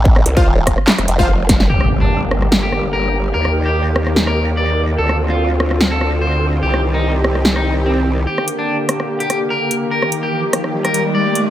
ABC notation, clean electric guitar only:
X:1
M:4/4
L:1/16
Q:1/4=146
K:Gm
V:1 name="Clean electric guitar"
z16 | G2 z D2 z4 G2 z B2 z2 | B2 z G2 z4 B2 z d2 z2 | A2 z F2 z4 A2 z c2 z2 |
G2 z E2 z4 E2 z C2 z2 | G2 z D2 z4 G2 z B2 z2 | B2 z G2 z4 B2 z d2 z2 |]